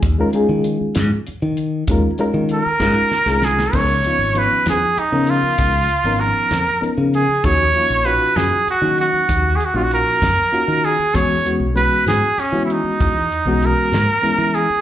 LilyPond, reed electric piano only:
\new Staff \with { instrumentName = "Reed electric piano" } { \time 6/8 \key ees \minor \tempo 4. = 65 r16 <aes des' ees' f' bes'>16 <aes des' ees' f' aes'>4~ <aes des' ees' f' aes'>16 r4 r16 | <aes des' ees' f' bes'>16 r16 <aes des' ees' f' bes'>8. r16 <aes des' ees' f' bes'>8 r16 <aes des' ees' f' aes'>8. | <f ces' des' ees' bes'>16 r16 <f ces' des' ees' f'>16 r16 <f ces' des' ees' f'>8. r8 <f ces' des' ees' bes'>8.~ | <f ces' des' ees' bes'>16 r8 <f ces' des' ees' bes'>8. r8 <f ces' des' ees' bes'>8. r16 |
<f bes des' ees' ges'>16 r16 <f bes des' ees' f'>16 r16 <bes, des' ees' f' ges'>8. r8 <ges bes des' ees' ges'>8.~ | <ges bes des' ees' ges'>16 r8 <bes des' ees' f' ges'>8. r8 <bes des' ees' f' ges'>8. r16 | <e gis b cis' fis'>16 r16 <e gis b cis' fis'>16 r16 <e gis b cis' fis'>8. r8 <e gis b cis' fis'>8.~ | <e gis b cis' fis'>16 r8 <e gis b cis' fis'>8. r8 <e gis b cis' e'>8. r16 | }